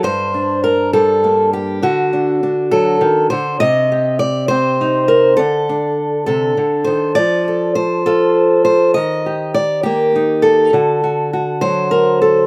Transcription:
0.03 G2 C5
0.34 D4
0.64 A#4
0.93 G3 A4
1.24 A#3
1.53 G4
1.82 D3 F#4
2.13 D4
2.43 D4
2.71 F#3 A4
3.01 D#3
3.30 D3 C5
3.60 C3 D#5
3.92 G4
4.19 D5
4.48 C4 C5
4.81 D#4
5.08 A#4
5.37 D3 A4
5.69 D4
6.26 C3 A4
6.57 D3
6.84 D#3 C5
7.15 F3 D5
7.48 A4
7.75 C5
8.06 F4 A4
8.65 C5
8.94 D#3 D#5
9.26 G4
9.54 D5
9.83 A#3 G4
10.16 D#4
10.42 A4
10.73 D3 F#4
11.04 F#4
11.33 F#4
11.61 F#3 C5
11.91 A#4
12.22 A4

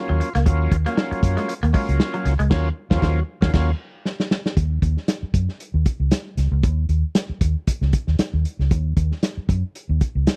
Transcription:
Already playing: F#3 A#3 C#4 F4
0.09 D#2 F#3
0.20 muted clean electric guitar stroke, closed hi-hat
0.35 C#2 A#3, snare, closed hi-hat
0.46 D#2 F#3 A#3 C#4 F4, kick, closed hi-hat
0.71 D#2, muted clean electric guitar stroke, kick, closed hi-hat
0.85 F#3 A#3 C#4 F4, snare, closed hi-hat
0.97 F#3, snare
1.11 muted clean electric guitar stroke, muted fingered electric bass stroke, closed hi-hat
1.23 F#2, kick, closed hi-hat
1.37 G#3, snare, closed hi-hat
1.48 muted clean electric guitar stroke, closed hi-hat
1.63 D#2 A#3, closed hi-hat
1.73 F#3 G#3 A#3 C#4 F4, kick, open hi-hat
1.89 C#2, closed hi-hat
2.00 snare
2.14 F#3, closed hi-hat
2.25 C#2, muted clean electric guitar stroke, snare, closed hi-hat
2.39 C#2 G#3, closed hi-hat
2.50 D#2 F#3 A#3 C#4 F4, kick, snare, crash
2.90 D#2 F3 A#3 C#4 F4, kick, snare
2.96 F#3
3.01 D#2 F3 A#3 C#4 F4, kick, snare
3.07 F#3
3.41 D#2 F#3 A#3 C#4 F4, kick, snare
3.52 D#2 F#3 A#3 C#4 F4, kick, snare, crash
4.05 snare
4.20 snare
4.31 snare
4.46 snare
4.57 D#2, kick, closed hi-hat
4.82 D#2, kick, closed hi-hat
4.97 snare
5.08 snare, closed hi-hat
5.23 muted fingered electric bass stroke
5.34 F#2, kick, closed hi-hat
5.49 snare
5.60 closed hi-hat
5.74 D#2
5.86 kick, closed hi-hat
6.00 C#2
6.11 snare, closed hi-hat
6.37 C#2, snare, closed hi-hat
6.52 C#2
6.63 D#2, kick, closed hi-hat
6.89 D#2, closed hi-hat
7.15 snare, closed hi-hat
7.29 muted fingered electric bass stroke
7.41 D#2, kick, closed hi-hat
7.67 kick, closed hi-hat
7.81 C#2, snare
7.93 kick, closed hi-hat
8.07 D#2, snare
8.19 muted fingered electric bass stroke, snare, closed hi-hat
8.33 D#2
8.45 closed hi-hat
8.59 C#2, snare
8.71 D#2, kick, closed hi-hat
8.97 D#2, kick, closed hi-hat
9.12 snare
9.23 snare, closed hi-hat
9.37 muted fingered electric bass stroke
9.49 F#2, kick, closed hi-hat
9.75 closed hi-hat
9.89 D#2
10.01 kick, closed hi-hat
10.15 C#2
10.27 snare, closed hi-hat

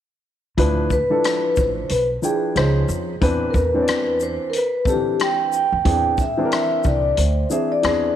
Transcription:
0.57 D2 F3 D4 E4 B4, kick, closed hi-hat
0.90 B4, kick, shaker
1.10 F3 D4 E4 A4
1.24 cross-stick, closed hi-hat
1.52 B4
1.57 A1 C5, kick, shaker
1.89 B1 B4, closed hi-hat
2.22 F3 D4 E4 G#4 G5, shaker
2.55 C#2 F3 C#4 D#4 C5, cross-stick, closed hi-hat
2.88 F2, shaker
3.21 E2 E3 C4 D4 B4, kick, closed hi-hat
3.50 E2 A#4, kick
3.55 B4, shaker
3.74 E3 C4 D4 C#5
3.82 D5
3.88 cross-stick, closed hi-hat
4.20 C5, shaker
4.50 A#4, closed hi-hat
4.57 B4
4.85 D3 C4 D4 A4, kick, shaker
4.89 E3 G4
5.19 G5, cross-stick, closed hi-hat
5.53 G5, shaker
5.72 F2
5.85 E2 E3 C4 D4 G#4, kick, closed hi-hat
6.18 E5, kick, shaker
6.37 E3 C4 D4 G#4
6.45 A#4
6.52 E5, cross-stick, closed hi-hat
6.84 C2 D5, kick, shaker
7.17 D2 C5, closed hi-hat
7.50 E3 C4 D4 G#4 E5, shaker
7.72 D5
7.83 E2 E3 C4 D4 G#4, cross-stick, closed hi-hat

